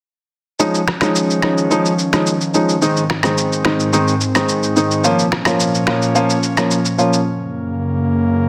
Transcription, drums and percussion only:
0.60 shaker
0.74 shaker
0.88 finger snap, cross-stick
1.01 finger snap, cross-stick, shaker
1.15 shaker
1.30 shaker
1.42 finger snap, cross-stick
1.58 shaker
1.71 shaker
1.85 shaker
1.99 shaker
2.13 finger snap, cross-stick, shaker
2.26 shaker
2.41 shaker
2.54 shaker
2.69 shaker
2.82 shaker
2.97 shaker
3.10 finger snap, cross-stick
3.23 finger snap, cross-stick, shaker
3.38 shaker
3.52 shaker
3.65 finger snap, cross-stick
3.80 shaker
3.93 shaker
4.08 shaker
4.21 shaker
4.35 finger snap, cross-stick, shaker
4.49 shaker
4.63 shaker
4.76 shaker
4.91 shaker
5.04 shaker
5.19 shaker
5.32 finger snap, cross-stick
5.45 finger snap, cross-stick, shaker
5.60 shaker
5.75 shaker
5.87 finger snap, cross-stick
6.02 shaker
6.15 shaker
6.30 shaker
6.43 shaker
6.57 finger snap, cross-stick, shaker
6.71 shaker
6.85 shaker
6.98 shaker
7.13 shaker

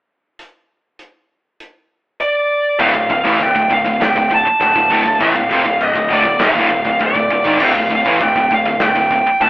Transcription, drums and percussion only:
0.39 closed hi-hat
0.99 closed hi-hat
1.60 closed hi-hat
2.20 closed hi-hat
2.80 kick, china
2.95 kick
3.10 kick
3.25 kick
3.41 kick, china
3.56 kick
3.71 kick
3.86 kick
4.02 snare, china
4.16 kick
4.31 kick
4.61 kick, china
4.76 kick
4.91 kick
5.06 kick
5.21 kick, china
5.36 kick
5.51 kick
5.66 kick
5.81 china
5.96 kick
6.11 kick
6.25 kick
6.40 snare, china
6.56 kick
6.71 kick
6.85 kick
7.00 kick, china
7.15 kick
7.31 kick
7.45 kick
7.60 kick, crash, china
7.75 kick
7.91 kick
8.06 kick
8.20 kick, china
8.36 kick
8.51 kick
8.66 kick
8.80 snare, china
8.96 kick
9.11 kick
9.41 kick, china

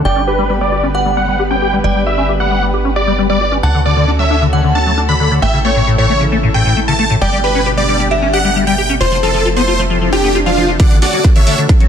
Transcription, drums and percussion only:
10.80 kick, closed hi-hat
10.91 closed hi-hat
11.02 open hi-hat, mid tom
11.13 closed hi-hat
11.24 kick, closed hi-hat
11.36 closed hi-hat
11.47 open hi-hat
11.58 closed hi-hat
11.69 kick, closed hi-hat
11.80 closed hi-hat

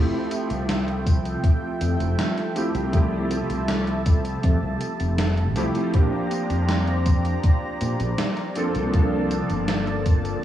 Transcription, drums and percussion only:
0.31 closed hi-hat, tambourine
0.50 closed hi-hat, tambourine
0.69 snare, closed hi-hat, tambourine
0.88 closed hi-hat
1.06 kick, closed hi-hat, tambourine
1.25 closed hi-hat, tambourine
1.44 kick, closed hi-hat, tambourine
1.81 closed hi-hat, tambourine
2.00 closed hi-hat, tambourine
2.19 snare, closed hi-hat, tambourine
2.38 snare, closed hi-hat
2.56 closed hi-hat, tambourine
2.75 closed hi-hat, tambourine
2.93 kick, closed hi-hat, tambourine
3.31 closed hi-hat, tambourine
3.50 closed hi-hat, tambourine
3.68 snare, closed hi-hat, tambourine
3.87 closed hi-hat
4.06 kick, closed hi-hat, tambourine
4.25 closed hi-hat, tambourine
4.43 kick, closed hi-hat, tambourine
4.81 closed hi-hat, tambourine
5.00 closed hi-hat, tambourine
5.18 snare, closed hi-hat, tambourine
5.37 closed hi-hat
5.56 closed hi-hat, tambourine
5.75 closed hi-hat, tambourine
5.94 kick, closed hi-hat, tambourine
6.31 closed hi-hat, tambourine
6.50 closed hi-hat, tambourine
6.69 snare, closed hi-hat, tambourine
6.88 closed hi-hat
7.06 kick, closed hi-hat, tambourine
7.25 closed hi-hat, tambourine
7.43 kick, closed hi-hat, tambourine
7.81 closed hi-hat, tambourine
8.00 closed hi-hat, tambourine
8.18 snare, closed hi-hat, tambourine
8.37 snare, closed hi-hat
8.55 closed hi-hat, tambourine
8.75 closed hi-hat, tambourine
8.93 kick, closed hi-hat, tambourine
9.31 closed hi-hat, tambourine
9.50 closed hi-hat, tambourine
9.68 snare, closed hi-hat, tambourine
9.87 closed hi-hat
10.06 kick, closed hi-hat, tambourine
10.25 closed hi-hat, tambourine

